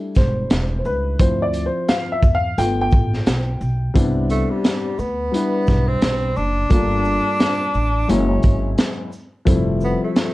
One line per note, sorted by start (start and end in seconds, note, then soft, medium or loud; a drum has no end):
0.00 1.15 G3 medium
0.00 1.15 A3 medium
0.00 1.15 D4 medium
0.00 1.15 E4 medium
0.15 0.45 E1 medium
0.15 0.77 C5 medium
0.15 kick medium
0.15 snare soft
0.15 closed hi-hat soft
0.15 shaker soft
0.50 0.80 E1 medium
0.50 snare loud
0.50 closed hi-hat medium
0.79 0.85 C5 medium
0.85 1.14 C#2 medium
0.85 1.21 B4 medium
0.85 shaker medium
1.19 1.65 D2 loud
1.19 2.19 F3 medium
1.19 2.19 C4 medium
1.19 2.19 E4 medium
1.19 1.43 C5 medium
1.19 kick loud
1.19 closed hi-hat loud
1.42 1.64 D5 medium
1.54 closed hi-hat medium
1.54 shaker medium
1.66 1.87 C5 medium
1.88 2.12 F5 loud
1.88 snare loud
1.88 closed hi-hat medium
2.12 2.35 E5 loud
2.23 2.52 E2 loud
2.23 kick loud
2.23 shaker medium
2.35 2.58 F5 loud
2.58 2.87 G1 loud
2.58 3.57 A3 medium
2.58 3.57 B3 medium
2.58 3.57 F4 medium
2.58 2.80 G5 loud
2.58 closed hi-hat medium
2.81 3.92 G5 loud
2.91 3.21 A1 medium
2.91 kick medium
2.91 shaker soft
3.14 snare soft
3.26 3.56 B1 medium
3.26 snare loud
3.26 closed hi-hat medium
3.61 3.90 B1 medium
3.61 shaker medium
3.94 4.41 C2 loud
3.94 4.92 G3 medium
3.94 4.93 B3 medium
3.94 4.93 C4 medium
3.94 4.93 D4 medium
3.94 4.94 E4 medium
3.94 kick loud
3.94 closed hi-hat loud
4.30 4.52 A3 medium
4.30 closed hi-hat medium
4.30 shaker medium
4.50 5.01 G3 medium
4.64 snare loud
4.64 closed hi-hat medium
4.99 5.28 D2 medium
4.99 5.89 B3 loud
4.99 shaker medium
5.32 6.30 G3 medium
5.32 6.31 D4 medium
5.32 6.31 E4 medium
5.32 6.31 B4 medium
5.32 closed hi-hat medium
5.67 5.97 B1 loud
5.67 kick medium
5.67 snare soft
5.67 shaker soft
5.87 6.38 C4 loud
6.02 6.31 B1 medium
6.02 snare loud
6.02 closed hi-hat medium
6.36 6.66 F#1 medium
6.36 8.11 D4 loud
6.36 shaker medium
6.69 7.17 G1 medium
6.69 7.68 G3 medium
6.69 7.68 A3 medium
6.69 7.69 A#3 medium
6.69 7.69 D4 medium
6.69 7.69 F4 medium
6.69 kick loud
6.69 closed hi-hat medium
7.05 shaker medium
7.40 snare loud
7.40 closed hi-hat medium
7.74 8.04 A1 medium
7.74 shaker medium
8.08 8.38 F#1 loud
8.08 9.06 F#3 medium
8.08 9.06 G#3 medium
8.08 9.07 A#3 medium
8.08 8.78 C#4 medium
8.08 9.07 C#4 medium
8.08 9.07 E4 medium
8.08 closed hi-hat medium
8.43 8.73 G#1 medium
8.43 kick medium
8.43 closed hi-hat soft
8.43 shaker soft
8.78 snare loud
8.78 closed hi-hat medium
9.12 shaker medium
9.45 9.93 F1 loud
9.45 10.34 F3 medium
9.45 10.34 G3 medium
9.45 10.34 A3 medium
9.45 10.34 C4 medium
9.45 10.34 E4 loud
9.45 kick loud
9.45 closed hi-hat loud
9.81 10.01 B3 medium
9.81 shaker medium
10.03 10.34 A3 medium
10.16 snare loud
10.16 closed hi-hat medium